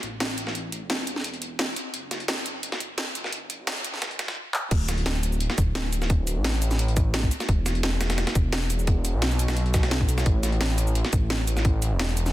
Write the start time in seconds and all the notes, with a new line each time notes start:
0.03 A1, closed hi-hat
0.20 snare, closed hi-hat
0.38 closed hi-hat
0.47 snare
0.55 closed hi-hat
0.72 closed hi-hat
0.81 E1
0.90 snare, closed hi-hat
0.99 closed hi-hat
1.07 closed hi-hat
1.16 snare
1.24 closed hi-hat
1.34 closed hi-hat
1.42 closed hi-hat
1.59 snare, closed hi-hat
1.76 closed hi-hat
1.94 F#1, closed hi-hat
2.11 snare, closed hi-hat
2.20 closed hi-hat
2.28 snare, closed hi-hat
2.46 closed hi-hat
2.63 closed hi-hat
2.72 snare
2.80 F#1, closed hi-hat
2.98 snare, closed hi-hat
3.07 closed hi-hat
3.15 closed hi-hat
3.24 snare
3.32 closed hi-hat
3.50 closed hi-hat
3.59 C#2
3.67 snare, closed hi-hat
3.76 closed hi-hat
3.84 closed hi-hat
3.94 snare
4.02 snare, closed hi-hat
4.11 closed hi-hat
4.19 snare, closed hi-hat
4.28 snare, closed hi-hat
4.54 clap
4.71 D1, kick, closed hi-hat, crash
4.89 snare, closed hi-hat, shaker
4.98 closed hi-hat
5.06 snare, closed hi-hat
5.23 closed hi-hat, shaker
5.32 shaker
5.40 closed hi-hat
5.50 snare
5.58 D1, kick, closed hi-hat, shaker
5.75 snare, closed hi-hat
5.93 closed hi-hat, shaker
6.02 snare, shaker
6.10 kick, closed hi-hat
6.27 closed hi-hat, shaker
6.36 A1
6.44 snare, closed hi-hat
6.54 closed hi-hat
6.62 closed hi-hat, shaker
6.71 snare, shaker
6.79 closed hi-hat
6.88 closed hi-hat
6.97 kick, closed hi-hat, shaker
7.14 snare, closed hi-hat
7.23 kick
7.31 closed hi-hat, shaker
7.40 snare, shaker
7.49 E1, kick, closed hi-hat
7.66 snare, closed hi-hat, shaker
7.75 closed hi-hat
7.83 snare, closed hi-hat
8.01 snare, closed hi-hat, shaker
8.10 snare, closed hi-hat, shaker
8.18 snare, closed hi-hat
8.27 snare, closed hi-hat
8.35 E1, kick, closed hi-hat, shaker
8.53 snare, closed hi-hat
8.70 closed hi-hat, shaker
8.79 shaker
8.87 kick, closed hi-hat
9.05 closed hi-hat, shaker
9.14 B1
9.22 snare, closed hi-hat
9.31 closed hi-hat, shaker
9.39 closed hi-hat, shaker
9.48 snare, closed hi-hat, shaker
9.57 closed hi-hat
9.66 closed hi-hat
9.74 kick, snare, closed hi-hat, shaker
9.83 snare, closed hi-hat
9.91 snare, closed hi-hat
10.01 A1, kick
10.09 B1, closed hi-hat, shaker
10.18 snare, shaker
10.26 A1, kick, closed hi-hat
10.43 snare, closed hi-hat, shaker
10.52 closed hi-hat
10.61 snare, closed hi-hat
10.78 closed hi-hat, shaker
10.87 shaker
10.95 closed hi-hat
11.05 snare
11.13 A1, kick, closed hi-hat, shaker
11.30 snare, closed hi-hat
11.47 closed hi-hat, shaker
11.57 snare, shaker
11.65 kick, closed hi-hat
11.82 closed hi-hat, shaker
11.91 E1
11.99 snare, closed hi-hat
12.09 closed hi-hat
12.17 closed hi-hat, shaker
12.26 snare, shaker